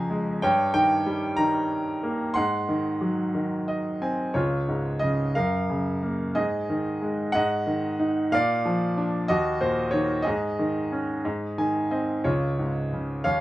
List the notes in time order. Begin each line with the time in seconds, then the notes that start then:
Already playing: F2 C#3 F3 G#4 F5 G#5 A#5
0.10 G#3
0.42 G2 C#5 G5
0.74 D#3 G5
1.06 G3
1.37 D#3 A#5
2.03 A#3
2.34 G#2 F#5 C6
2.69 D#3
3.01 F#3
3.35 D#3
3.68 D#5
4.02 C4 G#5
4.34 C#2 F4 C#5
4.68 G#2
4.99 C#3 D#5
5.35 F#2 A#4 F5
5.70 C#3
6.03 A#3
6.35 G#2 G#4 D#5
6.70 D#3
7.02 G#3
7.32 G#2 D#5 F#5
7.67 D#3
7.99 D#4
8.32 A#2 D5 F5
8.65 F3
8.97 D4
9.28 D#2 F#4 D#5
9.61 A#2 C5
9.91 D#3 C#5
10.22 G#4 D#5
10.27 G#2
10.59 D#3
10.92 C#4
11.25 G#2
11.58 D#3 G#5
11.91 C4 D#5
12.24 C#2 F4 C#5
12.59 G#2
12.93 C#3
13.24 D#2 C#5 F5